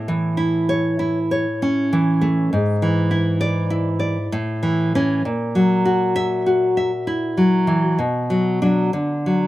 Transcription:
Already playing: A2
0.08 E3
0.37 E4
0.69 C#5
0.99 E4
1.31 C#5
1.62 C#4
1.93 E3
2.21 A3
2.53 G#2
2.82 E3
3.11 E4
3.41 D5
3.70 E4
3.99 D5
4.32 A2
4.63 E3
4.95 E3 C#4
5.25 A#2
5.55 F#3
5.85 F#4
6.16 E5
6.46 F#4
6.77 E5
7.07 E4
7.37 F#3
7.67 E3
7.99 B2
8.30 F#3
8.62 F#3 D4
8.93 D3
9.26 F#3

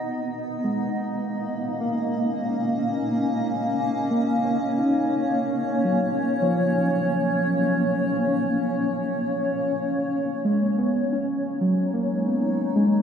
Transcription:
Already playing: B3 D#4 D#5
0.64 G#3 A#3
0.97 C#4
1.81 A#3
4.10 A#3
4.15 C#5
4.45 C#4
4.78 D#4
5.84 F#3
6.42 F3
10.45 G#3
10.78 B3
11.12 C#4
11.28 D#4
11.61 F#3
11.94 A#3
12.28 B3
12.51 D#5
12.76 G#3

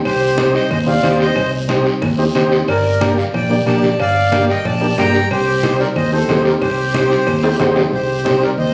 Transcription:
0.05 C2 G4 C5, cowbell, long guiro
0.22 high conga
0.37 C4 D#4 G4, cowbell, high conga, short guiro
0.55 C5 D#5, short guiro
0.71 D#2 C5 D#5, cowbell, high conga, low conga, long guiro
0.86 C4 D#4 G4 D5 F5, high conga
1.03 D#2 C4 D#4 G4, cowbell, high conga, short guiro
1.20 C5 D#5, short guiro
1.36 C2, cowbell, low conga, long guiro
1.53 high conga
1.69 C4 D#4 G4, cowbell, high conga, short guiro
1.86 short guiro
2.02 D#2, cowbell, high conga, low conga, long guiro
2.18 C4 D#4 G4
2.35 D#2 C4 D#4 G4, cowbell, high conga, short guiro
2.52 short guiro
2.68 G1 A#4 D5, cowbell, long guiro
2.85 high conga
3.00 A#3 D4 G4, cowbell, high conga, short guiro
3.17 D5 F5, short guiro
3.34 A#1 D5 G5, cowbell, high conga, low conga, long guiro
3.50 A#3 D4 G4, high conga
3.66 A#1 A#3 D4 G4 D5 A5, cowbell, high conga, short guiro
3.83 high conga, short guiro
3.99 G1 D5 F5, cowbell, long guiro
4.16 high conga
4.32 A#3 D4 G4, cowbell, high conga, short guiro
4.50 D#5 G5, short guiro
4.65 A#1 D5 A5, cowbell, high conga, low conga, long guiro
4.81 A#3 D4 G4
4.98 G2 A#3 D4 G4 G5 A#5, cowbell, high conga, low timbale, short guiro
5.14 short guiro
5.31 C2 G4 C5, cowbell, long guiro
5.47 high conga
5.63 C4 D#4 G4, cowbell, high conga, short guiro
5.80 A#4 D5, short guiro
5.96 D#2 C5 D#5, cowbell, high conga, low conga, long guiro
6.12 C4 D#4 G4 A4 C5
6.28 D#2 C4 D#4 G4, cowbell, high conga, low timbale, short guiro
6.45 G4 A#4, short guiro
6.62 C2 G4 C5, cowbell, low conga, long guiro
6.79 high conga
6.94 C4 D#4 G4, cowbell, high conga, short guiro
7.11 short guiro
7.27 D#2, cowbell, high conga, low conga, long guiro
7.43 C4 D#4 G4, high timbale
7.59 D#2 C4 D#4 G4, cowbell, high conga, low conga, high timbale, short guiro
7.76 high conga, low timbale, short guiro
7.92 C2 G4 C5, high conga, long guiro
8.24 C4 D#4 G4, high conga, short guiro
8.42 A#4 D5, short guiro
8.58 D#2 C5 D#5, high conga, long guiro

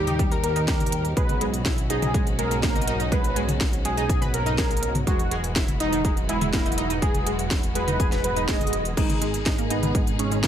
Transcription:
Already playing: D#2 G#2 A#2 D#3 G3 D#4 G4
0.07 D#4 D#5, closed hi-hat, mid tom
0.19 G3 G4, kick, closed hi-hat
0.32 A#4 A#5, closed hi-hat
0.44 A#4, closed hi-hat
0.56 D#4 D#5, closed hi-hat
0.68 G3 G4 A#4, kick, snare, closed hi-hat
0.80 closed hi-hat, mid tom
0.86 closed hi-hat
0.92 closed hi-hat
1.05 closed hi-hat
1.17 B1 B2 C#3 F#3 G#3 C#4 F#4 G#4 B4, kick, closed hi-hat
1.29 closed hi-hat, mid tom
1.41 G#3 G#4, closed hi-hat
1.54 closed hi-hat
1.66 E4 E5, kick, snare, closed hi-hat
1.78 closed hi-hat
1.90 D#4 G#4 D#5, closed hi-hat
2.02 D#3 D#4, closed hi-hat, mid tom
2.14 G#3 G#4, kick, closed hi-hat
2.27 closed hi-hat
2.39 G#3 G#4 A#4, closed hi-hat
2.51 G#3 G#4, closed hi-hat
2.63 A#3 A#4, kick, snare, closed hi-hat
2.75 D#4 D#5, closed hi-hat, mid tom
2.82 closed hi-hat
2.87 D#4 D#5, closed hi-hat
3.00 D#4 D#5, closed hi-hat
3.12 G#3 G#4 B4, kick, closed hi-hat
3.24 closed hi-hat
3.36 G#3 G#4, closed hi-hat
3.49 closed hi-hat, mid tom
3.61 kick, snare, closed hi-hat
3.73 closed hi-hat
3.85 G#3 G#4, closed hi-hat
3.97 D#4 D#5, closed hi-hat
4.09 G#4 G#5, kick, closed hi-hat
4.22 B4 B5, closed hi-hat, mid tom
4.34 A#4, closed hi-hat
4.46 D#4 D#5, closed hi-hat
4.58 G#3 G#4 A#4, kick, snare, closed hi-hat
4.71 closed hi-hat
4.77 closed hi-hat
4.83 closed hi-hat
4.95 closed hi-hat, mid tom
5.07 E1 E3 F#3 G#3 B3 F#4 G#4, kick, closed hi-hat
5.19 closed hi-hat
5.31 G#3 G#4, closed hi-hat
5.44 closed hi-hat
5.56 E4 E5, kick, snare, closed hi-hat
5.68 closed hi-hat, mid tom
5.80 D#4 D#5, closed hi-hat
5.93 D#3 D#4, closed hi-hat
6.05 G#3 G#4, kick, closed hi-hat
6.17 closed hi-hat
6.29 G#3 E4 G#4, closed hi-hat
6.41 G#3 G#4, closed hi-hat, mid tom
6.53 A#3 E4 A#4, kick, snare, closed hi-hat
6.66 D#4 D#5, closed hi-hat
6.72 closed hi-hat
6.78 D#4 D#5, closed hi-hat
6.90 D#4 D#5, closed hi-hat
7.02 G#3 G#4, kick, closed hi-hat
7.14 closed hi-hat, mid tom
7.27 G#3 G#4, closed hi-hat
7.39 closed hi-hat
7.51 kick, snare, closed hi-hat
7.63 closed hi-hat
7.75 G#3 G#4 B4, closed hi-hat
7.88 D#4 D#5, closed hi-hat, mid tom
8.00 G#4 G#5, kick, closed hi-hat, swell
8.12 B4 B5, snare, closed hi-hat
8.24 B4, closed hi-hat
8.36 D#4 D#5, closed hi-hat
8.49 G#3 G#4 D#5, kick, snare, closed hi-hat
8.61 closed hi-hat, mid tom
8.67 closed hi-hat
8.73 closed hi-hat
8.85 closed hi-hat
8.97 G#1 G#2 B2 D#3 G#3 D#4 G#4, kick, closed hi-hat, crash
9.10 closed hi-hat, mid tom
9.22 G#3 G#4, closed hi-hat
9.34 closed hi-hat
9.46 D#4 D#5, kick, snare, closed hi-hat
9.58 A#3 A#4, closed hi-hat
9.70 B3 D#4 D#5, closed hi-hat
9.83 D#3 D#4, closed hi-hat, mid tom
9.95 G#3 G#4, kick, closed hi-hat
10.07 closed hi-hat
10.19 G#3 C#4 G#4, closed hi-hat
10.32 G#3 G#4, closed hi-hat
10.44 A#3 C#4 A#4, kick, snare, closed hi-hat

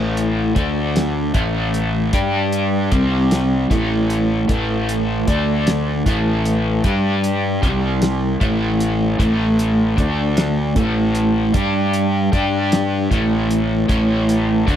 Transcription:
Already playing: A1 A2 E3 A3
0.17 closed hi-hat
0.55 D2 D3 A3 D4, kick, closed hi-hat
0.96 snare, closed hi-hat
1.34 A1 A2 E3 A3, kick, closed hi-hat
1.74 closed hi-hat
2.13 G2 G3 D4 G4, kick, closed hi-hat
2.53 closed hi-hat
2.91 C2 C3 G3 C4, kick, closed hi-hat
3.31 snare, closed hi-hat
3.70 A1 A2 E3 A3, kick, closed hi-hat
4.10 closed hi-hat
4.49 A1 A2 E3 A3, kick, closed hi-hat
4.89 closed hi-hat
5.27 D2 D3 A3 D4, kick, closed hi-hat
5.67 snare, closed hi-hat
6.06 A1 A2 E3 A3, kick, closed hi-hat
6.45 closed hi-hat
6.84 G2 G3 D4 G4, kick, closed hi-hat
7.24 closed hi-hat
7.63 C2 C3 G3 C4, kick, closed hi-hat
8.02 snare, closed hi-hat
8.40 A1 A2 E3 A3, kick, closed hi-hat
8.80 closed hi-hat
9.19 A1 A2 E3 A3, kick, closed hi-hat
9.59 closed hi-hat
9.97 D2 D3 A3 D4, kick, closed hi-hat
10.37 snare, closed hi-hat
10.76 A1 A2 E3 A3, kick, closed hi-hat
11.15 closed hi-hat
11.54 G2 G3 D4 G4, kick, closed hi-hat
11.94 closed hi-hat
12.32 G2 G3 D4 G4, kick, closed hi-hat
12.72 snare, closed hi-hat
13.11 A1 A2 E3 A3, kick, closed hi-hat
13.51 closed hi-hat
13.88 A1 A2 E3 A3, kick, closed hi-hat
14.29 closed hi-hat
14.67 D2 D3 A3 D4, kick, closed hi-hat

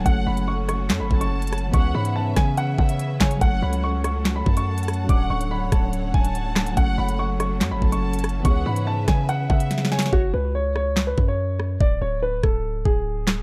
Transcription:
Already playing: F#5
0.00 F#3 A3
0.06 F#1 F#3 C#4 A4 F#5, kick, closed hi-hat
0.11 C#5
0.27 F#1 B5
0.37 closed hi-hat
0.48 C#6
0.69 C#6, cross-stick, closed hi-hat
0.90 F#2, snare, clap, closed hi-hat
1.00 F#1 B5
1.08 F#1 F#3 A3 C#4 A5, kick
1.12 A4 C#5
1.21 C#6, closed hi-hat
1.42 closed hi-hat
1.47 closed hi-hat
1.53 cross-stick, closed hi-hat
1.58 closed hi-hat
1.68 E3 B3
1.73 C#2 C#3 C#4 G#4 B4 E5 F#5 C#6, kick, closed hi-hat
1.79 C#5
1.94 G#2 B5
2.05 closed hi-hat
2.16 A5
2.36 C#3 G#5, kick, cross-stick, snare, closed hi-hat
2.57 F#5, closed hi-hat
2.78 C#3 E5 F#5, kick
2.89 closed hi-hat
2.99 closed hi-hat
3.20 C#3 C#5 G#5, kick, snare, clap
3.31 closed hi-hat
3.36 F#3 A3
3.41 F#1 F#3 C#4 A4 F#5, kick, closed hi-hat
3.47 C#5
3.62 C#2 B5
3.73 closed hi-hat
3.84 C#6
4.04 C#6, cross-stick, closed hi-hat
4.25 snare, clap, closed hi-hat
4.36 B5
4.46 F#2 A5, kick
4.57 C#6, closed hi-hat
4.78 closed hi-hat
4.83 closed hi-hat
4.88 cross-stick, closed hi-hat
4.93 closed hi-hat
5.04 F#3 C#4
5.09 D1 D3 A3 D4 A4 C#5 F#5 D6, kick, closed hi-hat
5.15 C#5
5.30 D1 C#6
5.41 closed hi-hat
5.51 B5
5.72 D1 A5, kick, cross-stick, closed hi-hat
5.93 closed hi-hat
6.14 D1 G#5 A5, kick
6.25 closed hi-hat
6.35 closed hi-hat
6.56 cross-stick, snare, clap
6.67 closed hi-hat
6.71 F#3 A3
6.77 F#1 F#3 C#4 A4 F#5, kick, closed hi-hat
6.83 C#5
6.98 F#1 B5
7.08 closed hi-hat
7.19 C#6
7.40 C#6, cross-stick, closed hi-hat
7.61 F#2, snare, clap, closed hi-hat
7.71 F#1 B5
7.79 F#1 F#3 A3 C#4 A5, kick
7.83 A4 C#5
7.92 C#6, closed hi-hat
8.13 closed hi-hat
8.19 closed hi-hat
8.24 cross-stick, closed hi-hat
8.29 closed hi-hat
8.39 E3 B3
8.45 C#2 C#3 C#4 G#4 B4 E5 F#5 C#6, kick, closed hi-hat
8.50 C#5
8.66 G#2 B5
8.76 closed hi-hat
8.87 A5
9.08 C#3 G#5, kick, cross-stick, snare, closed hi-hat
9.29 F#5, closed hi-hat
9.50 C#3 E5 F#5, kick
9.60 closed hi-hat
9.71 snare, closed hi-hat
9.78 snare
9.85 snare
9.92 C#5 G#5, snare
9.99 snare, closed hi-hat
10.06 snare
10.13 F#1 F#4, kick
10.34 C#2 B4
10.55 C#5
10.76 C#5, cross-stick
10.97 snare, clap
11.07 B4
11.18 F#2, kick
11.28 C#5
11.60 cross-stick
11.80 D1 D5, kick
12.01 D1 C#5
12.22 B4
12.43 D1 A4, kick, cross-stick
12.85 D1 G#4, kick
13.27 cross-stick, snare, clap

